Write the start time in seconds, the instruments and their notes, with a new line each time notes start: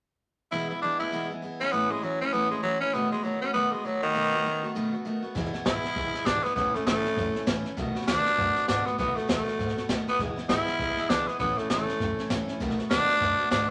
0.51 steel-string acoustic guitar E2 B2 E3 G#3 B3 E4, tenor saxophone E4
0.69 steel-string acoustic guitar E3 G#3 B3 E4, tenor saxophone E4
0.82 steel-string acoustic guitar E3 G#3 B3 E4, tenor saxophone D4
0.99 steel-string acoustic guitar E3 G#3 B3 E4, tenor saxophone E4
1.12 steel-string acoustic guitar E2 B2 E3 G#3 B3 E4
1.30 steel-string acoustic guitar E3 G#3 B3 E4
1.42 steel-string acoustic guitar E3 G#3 B3 E4
1.60 steel-string acoustic guitar E3 G#3 B3 E4, tenor saxophone C#4
1.72 steel-string acoustic guitar A2 E3 A3 C#4 E4, tenor saxophone B3
1.90 tenor saxophone G#3, steel-string acoustic guitar A3 C#4 E4
2.02 steel-string acoustic guitar E3 A3 C#4 E4, tenor saxophone F#3
2.21 steel-string acoustic guitar A3 C#4 E4, tenor saxophone C#4
2.33 steel-string acoustic guitar A2 E3 A3 C#4 E4, tenor saxophone B3
2.50 tenor saxophone G#3, steel-string acoustic guitar A3 C#4 E4
2.63 steel-string acoustic guitar E3 A3 C#4 E4, tenor saxophone F#3
2.80 steel-string acoustic guitar A3 C#4 E4, tenor saxophone C#4
2.94 steel-string acoustic guitar B2 D#3 A3 B3 F#4, tenor saxophone B3
3.11 tenor saxophone G#3, steel-string acoustic guitar A3 B3 F#4
3.23 steel-string acoustic guitar D#3 A3 B3 F#4, tenor saxophone F#3
3.42 steel-string acoustic guitar A3 B3 F#4, tenor saxophone C#4
3.53 steel-string acoustic guitar B2 D#3 A3 B3 F#4, tenor saxophone B3
3.72 tenor saxophone G#3, steel-string acoustic guitar A3 B3 F#4
3.85 steel-string acoustic guitar D#3 A3 B3 F#4, tenor saxophone F#3
4.02 tenor saxophone D#3, steel-string acoustic guitar A3 B3 F#4
4.15 steel-string acoustic guitar B2 D#3 A3 B3 F#4
4.33 steel-string acoustic guitar A3 B3 F#4
4.45 steel-string acoustic guitar D#3 A3 B3 F#4
4.63 steel-string acoustic guitar A3 B3 F#4
4.75 steel-string acoustic guitar B2 D#3 A3 B3 F#4
4.92 steel-string acoustic guitar A3 B3 F#4
5.05 steel-string acoustic guitar D#3 A3 B3 F#4
5.22 steel-string acoustic guitar A3 B3 F#4
5.35 upright bass E1, steel-string acoustic guitar E2 B2 E3 G#3 B3 E4, kick, snare
5.45 snare
5.53 steel-string acoustic guitar E3 G#3 B3 E4, muted upright bass stroke, snare
5.65 upright bass G#1, steel-string acoustic guitar E2 B2 E3 G#3 B3 E4, tenor saxophone E4, kick, snare, hi-hat pedal
5.83 steel-string acoustic guitar E3 G#3 B3 E4, muted upright bass stroke, snare
5.95 upright bass B1, steel-string acoustic guitar E3 G#3 B3 E4, kick, snare
6.13 steel-string acoustic guitar E3 G#3 B3 E4, muted upright bass stroke, snare
6.25 upright bass G#1, steel-string acoustic guitar E2 B2 E3 G#3 B3 E4, tenor saxophone D4, kick, snare, hi-hat pedal
6.43 steel-string acoustic guitar E3 G#3 B3 E4, tenor saxophone B3, snare
6.55 upright bass A1, steel-string acoustic guitar A2 E3 A3 C#4 E4, tenor saxophone B3, kick, snare
6.74 tenor saxophone A3, steel-string acoustic guitar A3 C#4 E4, muted upright bass stroke, snare
6.86 upright bass C#2, steel-string acoustic guitar A2 E3 A3 C#4 E4, tenor saxophone A3, kick, snare, hi-hat pedal
7.04 steel-string acoustic guitar A3 C#4 E4, muted upright bass stroke, snare
7.17 upright bass F#2, steel-string acoustic guitar E3 A3 C#4 E4, kick, snare
7.35 steel-string acoustic guitar A3 C#4 E4, snare
7.46 steel-string acoustic guitar A2 E3 A3 C#4 E4, upright bass A2, kick, snare, hi-hat pedal
7.64 steel-string acoustic guitar A3 C#4 E4, snare
7.77 upright bass B1, steel-string acoustic guitar B2 D#3 A3 B3 F#4, kick, snare
7.95 steel-string acoustic guitar A3 B3 F#4, muted upright bass stroke, snare
8.01 snare
8.07 upright bass D#2, steel-string acoustic guitar B2 D#3 A3 B3 F#4, tenor saxophone D4, kick, snare, hi-hat pedal
8.25 steel-string acoustic guitar A3 B3 F#4, muted upright bass stroke, snare
8.37 upright bass F#2, steel-string acoustic guitar D#3 A3 B3 F#4, kick, snare
8.56 steel-string acoustic guitar A3 B3 F#4, snare
8.68 upright bass G#2, steel-string acoustic guitar B2 D#3 A3 B3 F#4, tenor saxophone D4, kick, snare, hi-hat pedal
8.86 steel-string acoustic guitar A3 B3 F#4, tenor saxophone B3, snare
8.98 upright bass B1, steel-string acoustic guitar B2 D#3 A3 B3 F#4, tenor saxophone B3, kick, snare
9.16 tenor saxophone A3, steel-string acoustic guitar A3 B3 F#4, muted upright bass stroke, snare
9.28 upright bass E2, steel-string acoustic guitar B2 D#3 A3 B3 F#4, tenor saxophone A3, kick, snare, hi-hat pedal
9.46 steel-string acoustic guitar A3 B3 F#4, snare
9.58 upright bass G#2, steel-string acoustic guitar D#3 A3 B3 F#4, kick, snare
9.68 snare
9.76 steel-string acoustic guitar A3 B3 F#4, snare
9.89 steel-string acoustic guitar B2 D#3 A3 B3 F#4, upright bass B2, kick, snare, hi-hat pedal
10.07 steel-string acoustic guitar A3 B3 F#4, tenor saxophone B3, muted upright bass stroke, snare
10.19 upright bass E1, steel-string acoustic guitar E2 B2 E3 G#3 B3 E4, kick, snare
10.36 steel-string acoustic guitar E3 G#3 B3 E4, muted upright bass stroke, snare
10.49 upright bass G#1, steel-string acoustic guitar E2 B2 E3 G#3 B3 E4, tenor saxophone E4, kick, snare, hi-hat pedal
10.67 steel-string acoustic guitar E3 G#3 B3 E4, muted upright bass stroke, snare
10.79 upright bass B1, steel-string acoustic guitar E3 G#3 B3 E4, kick, snare
10.97 steel-string acoustic guitar E3 G#3 B3 E4, muted upright bass stroke, snare
11.09 upright bass C#2, steel-string acoustic guitar E2 B2 E3 G#3 B3 E4, tenor saxophone D4, kick, snare, hi-hat pedal
11.27 steel-string acoustic guitar E3 G#3 B3 E4, tenor saxophone B3, snare
11.39 upright bass A1, steel-string acoustic guitar A2 E3 A3 C#4 E4, tenor saxophone B3, kick, snare
11.57 tenor saxophone A3, steel-string acoustic guitar A3 C#4 E4, snare
11.70 upright bass C#2, steel-string acoustic guitar A2 E3 A3 C#4 E4, tenor saxophone A3, kick, snare, hi-hat pedal
11.87 steel-string acoustic guitar A3 C#4 E4, muted upright bass stroke, snare
12.00 upright bass F#2, steel-string acoustic guitar E3 A3 C#4 E4, kick, snare
12.17 steel-string acoustic guitar A3 C#4 E4, muted upright bass stroke, snare
12.30 steel-string acoustic guitar A2 E3 A3 C#4 E4, upright bass A2, kick, snare, hi-hat pedal
12.48 steel-string acoustic guitar A3 C#4 E4, muted upright bass stroke, snare
12.60 upright bass B1, steel-string acoustic guitar B2 D#3 A3 B3 F#4, kick, snare
12.70 snare
12.78 steel-string acoustic guitar A3 B3 F#4, muted upright bass stroke, snare
12.90 upright bass D#2, steel-string acoustic guitar B2 D#3 A3 B3 F#4, tenor saxophone D4, kick, snare, hi-hat pedal
13.08 steel-string acoustic guitar A3 B3 F#4, muted upright bass stroke, snare
13.20 upright bass F#2, steel-string acoustic guitar D#3 A3 B3 F#4, kick, snare
13.38 steel-string acoustic guitar A3 B3 F#4, snare
13.50 upright bass G#2, steel-string acoustic guitar B2 D#3 A3 B3 F#4, tenor saxophone D4, kick, snare, hi-hat pedal